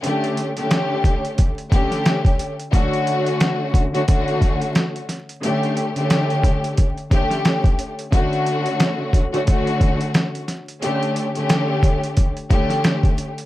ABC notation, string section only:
X:1
M:4/4
L:1/16
Q:"Swing 16ths" 1/4=89
K:D
V:1 name="String section"
[D,A,CG]3 [D,A,CG]6 z [D,A,CG]4- [D,A,CG] z | [D,A,CF]6 z [D,A,CF] [D,A,CF]6 z2 | [D,A,CG]3 [D,A,CG]6 z [D,A,CG]4- [D,A,CG] z | [D,A,CF]6 z [D,A,CF] [D,A,CF]6 z2 |
[D,A,CG]3 [D,A,CG]6 z [D,A,CG]4- [D,A,CG] z |]